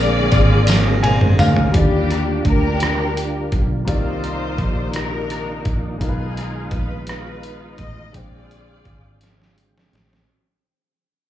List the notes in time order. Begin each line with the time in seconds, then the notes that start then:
Already playing: A#1 A#2 D3 G#3 A#3 C4 D4 F4 G#4 A#4 D5 G5
0.32 G#1, kick, ride bell, tambourine
0.67 snare, ride bell, tambourine
1.03 C5 G#5, high tom, ride bell
1.21 mid tom
1.39 D2 F5, mid tom, ride bell, tambourine
1.56 floor tom
1.72 D#2 D3 G3 D4 E4 F4, kick, closed hi-hat
1.76 A#3 D4 G4 D5
1.81 F4
2.10 cross-stick, closed hi-hat
2.45 D2 D4 G4 A#4, kick, closed hi-hat
2.80 cross-stick, closed hi-hat
3.17 closed hi-hat
3.52 B1, kick, closed hi-hat
3.85 C2 C3 D#3 A#3 D#4 F4 C5 D5, kick, closed hi-hat
3.89 D5
4.24 closed hi-hat
4.58 A#1, kick, closed hi-hat
4.92 D4 D#4 A#4, cross-stick, closed hi-hat
5.30 cross-stick, closed hi-hat
5.65 A#1, kick, closed hi-hat
5.98 B1 D#3 G#3 B3 D#4 F4 G#4, kick, closed hi-hat
6.03 A#4
6.07 F4 B4
6.37 cross-stick, closed hi-hat
6.71 A#1 B4, kick, closed hi-hat
7.07 D#4 F4 B4, cross-stick, closed hi-hat
7.43 closed hi-hat
7.78 A1 D#5, kick, closed hi-hat
8.12 A#1 A#2 D3 G#3 C4 D4 D5 G5, kick, closed hi-hat
8.17 F4 G#4 C5
8.51 closed hi-hat
8.85 G#1, kick, closed hi-hat
9.21 snare, closed hi-hat
9.42 snare
9.58 closed hi-hat
9.78 snare
9.93 A1, snare, closed hi-hat
10.13 snare